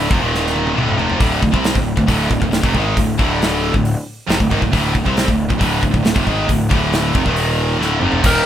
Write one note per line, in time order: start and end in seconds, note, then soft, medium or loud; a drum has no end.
0.00 0.10 D3 loud
0.09 0.20 F1 medium
0.09 0.19 F2 medium
0.09 0.20 C3 medium
0.09 kick loud
0.19 0.72 D#1 medium
0.19 0.74 D#2 medium
0.19 0.75 A#2 medium
0.19 0.75 D#3 medium
0.35 snare medium
0.47 snare medium
0.56 high tom medium
0.67 high tom medium
0.74 0.96 D1 medium
0.74 0.96 D2 medium
0.74 0.97 A2 loud
0.74 0.97 D3 loud
0.78 mid tom medium
0.89 mid tom medium
0.97 1.19 F1 medium
0.97 1.18 F2 medium
0.97 1.19 C3 medium
0.97 1.19 F3 medium
0.97 floor tom medium
1.10 floor tom medium
1.19 1.40 D1 loud
1.19 1.40 D2 medium
1.19 1.40 A2 medium
1.19 1.41 D3 loud
1.19 kick loud
1.19 open hi-hat medium
1.41 1.52 D1 medium
1.41 1.51 D2 medium
1.41 1.51 A2 medium
1.41 kick medium
1.52 1.73 C2 medium
1.52 1.74 C3 medium
1.52 1.74 G3 medium
1.52 1.74 C4 medium
1.52 kick medium
1.64 snare loud
1.64 open hi-hat medium
1.74 1.96 D1 medium
1.74 1.92 D2 medium
1.74 1.92 A2 medium
1.74 kick medium
1.96 2.07 D1 medium
1.96 2.06 D2 medium
1.96 2.06 A2 medium
1.96 kick medium
2.07 2.28 D1 medium
2.07 2.28 D2 medium
2.07 2.28 A2 medium
2.07 2.29 D3 medium
2.07 kick medium
2.07 open hi-hat medium
2.29 2.40 D1 medium
2.29 2.39 D2 medium
2.29 2.39 A2 medium
2.29 kick medium
2.40 2.52 D1 medium
2.40 2.50 D2 medium
2.40 2.50 A2 medium
2.40 kick medium
2.51 2.62 D1 medium
2.51 2.61 D2 medium
2.51 2.62 A2 medium
2.51 snare loud
2.51 open hi-hat medium
2.61 2.74 F1 medium
2.61 2.72 F2 medium
2.61 2.73 C3 medium
2.61 kick loud
2.73 2.95 G#1 medium
2.73 2.95 G#2 medium
2.73 2.95 D#3 medium
2.73 2.95 G#3 loud
2.73 kick medium
2.96 3.17 D1 medium
2.96 3.14 D2 medium
2.96 3.14 A2 medium
2.96 kick medium
2.96 open hi-hat medium
3.18 3.70 D1 medium
3.18 3.72 D2 medium
3.18 3.72 A2 medium
3.18 3.73 D3 loud
3.18 kick medium
3.42 snare loud
3.42 open hi-hat medium
3.73 3.94 D1 medium
3.73 3.91 D2 medium
3.73 3.91 A2 medium
3.73 kick medium
3.85 open hi-hat medium
4.28 4.39 F1 medium
4.28 4.38 F2 medium
4.28 4.39 C3 medium
4.28 snare loud
4.28 open hi-hat medium
4.40 4.50 D1 medium
4.40 4.50 D2 medium
4.40 4.51 A2 medium
4.40 kick medium
4.51 4.61 G#1 medium
4.51 4.61 G#2 medium
4.51 4.61 D#3 medium
4.51 kick medium
4.62 4.72 D1 medium
4.62 4.71 D2 medium
4.62 4.71 A2 medium
4.62 kick medium
4.72 4.93 D1 loud
4.72 4.93 D2 loud
4.72 4.93 A2 loud
4.72 4.94 D3 loud
4.72 kick medium
4.72 open hi-hat medium
4.94 5.05 D1 medium
4.94 5.05 D2 medium
4.94 5.05 A2 medium
4.94 kick medium
5.05 5.26 C2 loud
5.05 5.27 C3 loud
5.05 5.27 G3 loud
5.05 5.27 C4 loud
5.05 kick medium
5.17 snare loud
5.17 open hi-hat medium
5.27 5.48 D1 medium
5.27 5.45 D2 medium
5.27 5.45 A2 medium
5.27 kick medium
5.50 5.60 D1 medium
5.50 5.58 D2 medium
5.50 5.59 A2 medium
5.50 kick medium
5.59 5.81 D1 medium
5.59 5.81 D2 medium
5.59 5.81 A2 medium
5.59 5.82 D3 medium
5.59 kick medium
5.59 open hi-hat medium
5.82 5.93 D1 medium
5.82 5.92 D2 medium
5.82 5.92 A2 medium
5.82 kick medium
5.93 6.04 D1 medium
5.93 6.03 D2 medium
5.93 6.04 A2 medium
5.93 kick medium
6.04 6.15 D1 medium
6.04 6.14 D2 medium
6.04 6.15 A2 medium
6.04 snare loud
6.04 open hi-hat medium
6.14 6.26 F1 medium
6.14 6.25 F2 medium
6.14 6.25 C3 medium
6.14 kick loud
6.25 6.47 G#1 loud
6.25 6.47 G#2 medium
6.25 6.48 D#3 medium
6.25 6.48 G#3 medium
6.25 kick medium
6.49 6.69 D1 medium
6.49 6.66 D2 medium
6.49 6.67 A2 medium
6.49 kick medium
6.49 open hi-hat medium
6.69 7.11 D1 medium
6.69 7.13 D2 medium
6.69 7.13 A2 medium
6.69 7.14 D3 loud
6.69 kick loud
6.93 snare loud
6.93 open hi-hat medium
7.14 7.25 F1 medium
7.14 7.25 F2 medium
7.14 7.25 C3 medium
7.14 kick loud
7.25 7.77 D#1 medium
7.25 7.79 D#2 medium
7.25 7.80 A#2 medium
7.25 7.80 D#3 loud
7.25 kick medium
7.36 open hi-hat medium
7.79 8.00 D1 medium
7.79 8.02 D2 loud
7.79 8.02 A2 medium
7.79 8.02 D3 loud
7.79 snare medium
8.00 8.22 F1 medium
8.00 8.23 F2 medium
8.00 8.23 C3 medium
8.00 8.24 F3 medium
8.00 mid tom medium
8.12 floor tom medium
8.23 8.38 D#1 loud
8.23 8.45 D#2 medium
8.23 8.45 A#2 loud
8.23 8.46 D#3 loud
8.23 8.46 G3 loud
8.23 8.46 G4 loud
8.23 8.46 A#4 medium
8.23 kick loud
8.23 crash loud
8.23 crash medium